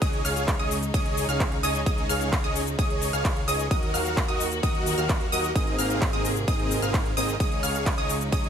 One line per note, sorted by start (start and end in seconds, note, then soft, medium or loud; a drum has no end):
0.02 0.23 C#2 loud
0.02 3.67 C#3 medium
0.02 3.67 G#3 medium
0.02 3.67 D#4 loud
0.02 0.22 G#4 loud
0.02 0.22 C#5 medium
0.02 0.22 D#5 loud
0.02 0.22 D#6 loud
0.02 kick loud
0.02 closed hi-hat medium
0.02 ride medium
0.02 shaker soft
0.13 closed hi-hat soft
0.25 0.57 C#2 loud
0.25 0.57 G#4 medium
0.25 0.57 C#5 medium
0.25 0.57 F5 medium
0.25 0.57 F6 loud
0.25 open hi-hat loud
0.25 shaker medium
0.36 closed hi-hat medium
0.36 shaker soft
0.48 kick loud
0.48 clap loud
0.48 closed hi-hat medium
0.48 ride medium
0.48 shaker soft
0.59 0.92 C#2 loud
0.59 0.77 G#4 medium
0.59 0.77 C#5 medium
0.59 0.77 D#5 loud
0.59 0.77 D#6 medium
0.59 closed hi-hat soft
0.71 open hi-hat loud
0.71 shaker medium
0.82 closed hi-hat medium
0.82 shaker soft
0.94 1.26 C#2 loud
0.94 1.26 G#4 loud
0.94 1.26 C#5 medium
0.94 1.26 D#5 loud
0.94 1.26 D#6 loud
0.94 kick loud
0.94 closed hi-hat medium
0.94 ride medium
0.94 shaker soft
1.06 closed hi-hat soft
1.17 open hi-hat loud
1.17 shaker medium
1.29 1.61 C#2 loud
1.29 1.56 G#4 medium
1.29 1.57 C#5 medium
1.29 1.57 F5 medium
1.29 1.57 F6 medium
1.29 closed hi-hat medium
1.29 shaker soft
1.40 kick loud
1.40 clap loud
1.40 closed hi-hat medium
1.40 ride medium
1.40 shaker soft
1.52 closed hi-hat soft
1.63 1.84 C#2 medium
1.63 1.81 G#4 loud
1.63 1.81 C#5 loud
1.63 1.81 D#5 loud
1.63 1.81 D#6 loud
1.63 open hi-hat loud
1.63 shaker medium
1.75 closed hi-hat medium
1.75 shaker soft
1.86 2.07 C#2 loud
1.86 2.07 G#4 loud
1.86 2.07 C#5 medium
1.86 2.07 D#5 loud
1.86 2.07 D#6 loud
1.86 kick loud
1.86 closed hi-hat medium
1.86 ride medium
1.86 shaker soft
1.98 closed hi-hat soft
2.09 2.42 C#2 loud
2.09 2.41 G#4 medium
2.09 2.41 C#5 medium
2.09 2.41 F5 loud
2.09 2.41 F6 loud
2.09 open hi-hat loud
2.09 shaker medium
2.21 closed hi-hat medium
2.21 shaker soft
2.33 kick loud
2.33 clap loud
2.33 closed hi-hat medium
2.33 ride medium
2.33 shaker soft
2.44 2.76 C#2 loud
2.44 2.61 G#4 medium
2.44 2.61 C#5 medium
2.44 2.61 D#5 loud
2.44 2.61 D#6 medium
2.44 closed hi-hat soft
2.56 open hi-hat loud
2.56 shaker medium
2.67 closed hi-hat medium
2.67 shaker soft
2.79 3.11 C#2 loud
2.79 3.11 G#4 loud
2.79 3.11 C#5 medium
2.79 3.11 D#5 loud
2.79 3.11 D#6 loud
2.79 kick loud
2.79 closed hi-hat medium
2.79 ride medium
2.79 shaker soft
2.90 closed hi-hat soft
3.02 open hi-hat loud
3.02 shaker medium
3.13 3.46 C#2 loud
3.13 3.41 G#4 medium
3.13 3.41 C#5 medium
3.13 3.41 F5 medium
3.13 3.41 F6 medium
3.13 closed hi-hat medium
3.13 shaker soft
3.25 kick loud
3.25 clap loud
3.25 closed hi-hat medium
3.25 ride medium
3.25 shaker soft
3.36 closed hi-hat soft
3.48 3.69 C#2 medium
3.48 3.65 G#4 loud
3.48 3.65 C#5 medium
3.48 3.65 D#5 loud
3.48 3.65 D#6 loud
3.48 open hi-hat loud
3.48 shaker medium
3.60 closed hi-hat medium
3.60 shaker soft
3.71 3.92 D#2 loud
3.71 5.54 D#3 medium
3.71 7.37 A#3 medium
3.71 5.54 F#4 loud
3.71 3.91 F#4 medium
3.71 3.91 A#4 medium
3.71 3.91 D#5 loud
3.71 3.91 D#6 loud
3.71 kick loud
3.71 closed hi-hat medium
3.71 ride medium
3.71 shaker soft
3.83 closed hi-hat soft
3.94 4.26 D#2 loud
3.94 4.26 F#4 medium
3.94 4.26 A#4 medium
3.94 4.26 F5 loud
3.94 4.26 F6 loud
3.94 open hi-hat loud
3.94 shaker medium
4.06 closed hi-hat medium
4.06 shaker soft
4.17 kick loud
4.17 clap loud
4.17 closed hi-hat medium
4.17 ride medium
4.17 shaker soft
4.28 4.61 D#2 loud
4.28 4.46 F#4 medium
4.28 4.46 A#4 medium
4.28 4.46 D#5 medium
4.28 4.46 D#6 medium
4.28 closed hi-hat soft
4.40 open hi-hat loud
4.40 shaker medium
4.52 closed hi-hat medium
4.52 shaker soft
4.63 4.96 D#2 loud
4.63 4.95 F#4 loud
4.63 4.95 A#4 medium
4.63 4.95 D#5 loud
4.63 4.95 D#6 loud
4.63 kick loud
4.63 closed hi-hat medium
4.63 ride medium
4.63 shaker soft
4.75 closed hi-hat soft
4.86 open hi-hat loud
4.86 shaker medium
4.98 5.30 D#2 loud
4.98 5.26 F#4 medium
4.98 5.26 A#4 medium
4.98 5.26 F5 medium
4.98 5.26 F6 medium
4.98 closed hi-hat medium
4.98 shaker soft
5.09 kick loud
5.09 clap loud
5.09 closed hi-hat medium
5.09 ride medium
5.09 shaker soft
5.21 closed hi-hat soft
5.32 5.53 D#2 medium
5.32 5.50 F#4 loud
5.32 5.50 A#4 medium
5.32 5.50 D#5 loud
5.32 5.50 D#6 loud
5.32 open hi-hat loud
5.32 shaker medium
5.44 closed hi-hat soft
5.44 shaker soft
5.55 5.76 G#1 loud
5.55 7.38 C3 loud
5.55 5.76 C4 medium
5.55 5.76 D#4 medium
5.55 7.38 G#4 loud
5.55 5.76 G#4 medium
5.55 5.76 A#4 medium
5.55 5.76 D#5 loud
5.55 5.76 D#6 loud
5.55 kick loud
5.55 closed hi-hat soft
5.55 ride medium
5.55 shaker soft
5.67 closed hi-hat soft
5.79 6.11 G#1 loud
5.79 6.11 C4 medium
5.79 6.11 D#4 medium
5.79 6.11 G#4 medium
5.79 6.11 A#4 medium
5.79 6.11 F5 medium
5.79 6.10 F6 loud
5.79 open hi-hat loud
5.79 shaker medium
5.90 closed hi-hat medium
5.90 shaker soft
6.02 kick loud
6.02 clap loud
6.02 closed hi-hat medium
6.02 ride medium
6.02 shaker soft
6.13 6.46 G#1 loud
6.13 6.31 C4 medium
6.13 6.31 D#4 medium
6.13 6.31 G#4 medium
6.13 6.31 A#4 medium
6.13 6.31 D#5 medium
6.13 6.31 D#6 medium
6.13 closed hi-hat soft
6.25 open hi-hat loud
6.25 shaker medium
6.36 closed hi-hat soft
6.36 shaker soft
6.48 6.80 G#1 loud
6.48 6.80 C4 loud
6.48 6.80 D#4 medium
6.48 6.80 G#4 medium
6.48 6.80 A#4 loud
6.48 6.80 D#5 loud
6.48 6.80 D#6 loud
6.48 kick loud
6.48 closed hi-hat medium
6.48 ride medium
6.48 shaker soft
6.59 closed hi-hat soft
6.71 open hi-hat loud
6.71 shaker medium
6.82 7.15 G#1 loud
6.82 7.10 C4 medium
6.82 7.10 D#4 medium
6.82 7.10 G#4 medium
6.82 7.10 A#4 medium
6.82 7.10 F5 medium
6.82 7.10 F6 medium
6.82 closed hi-hat medium
6.82 shaker soft
6.94 kick loud
6.94 clap loud
6.94 closed hi-hat medium
6.94 ride medium
6.94 shaker soft
7.06 closed hi-hat soft
7.17 7.38 G#1 medium
7.17 7.35 C4 loud
7.17 7.35 D#4 medium
7.17 7.35 G#4 medium
7.17 7.35 A#4 loud
7.17 7.35 D#5 loud
7.17 7.34 D#6 loud
7.17 open hi-hat loud
7.17 shaker medium
7.29 closed hi-hat soft
7.29 shaker soft
7.40 7.61 C#2 loud
7.40 8.49 C#3 medium
7.40 8.49 G#3 medium
7.40 8.49 D#4 loud
7.40 7.61 G#4 loud
7.40 7.61 C#5 medium
7.40 7.61 D#5 loud
7.40 7.60 D#6 loud
7.40 kick loud
7.40 closed hi-hat medium
7.40 ride medium
7.40 shaker soft
7.52 closed hi-hat soft
7.63 7.96 C#2 loud
7.63 7.95 G#4 medium
7.63 7.95 C#5 medium
7.63 7.95 F5 loud
7.63 7.95 F6 loud
7.63 open hi-hat loud
7.63 shaker medium
7.75 closed hi-hat medium
7.75 shaker soft
7.86 kick loud
7.86 clap loud
7.86 closed hi-hat medium
7.86 ride medium
7.86 shaker soft
7.98 8.30 C#2 medium
7.98 8.15 G#4 medium
7.98 8.15 C#5 medium
7.98 8.15 D#5 medium
7.98 8.15 D#6 medium
7.98 closed hi-hat soft
8.09 open hi-hat loud
8.09 shaker medium
8.21 closed hi-hat soft
8.21 shaker soft
8.32 8.49 C#2 loud
8.32 8.49 G#4 loud
8.32 8.49 C#5 loud
8.32 8.49 D#5 loud
8.32 8.49 D#6 loud
8.32 kick loud
8.32 closed hi-hat medium
8.32 ride medium
8.32 shaker soft
8.44 closed hi-hat soft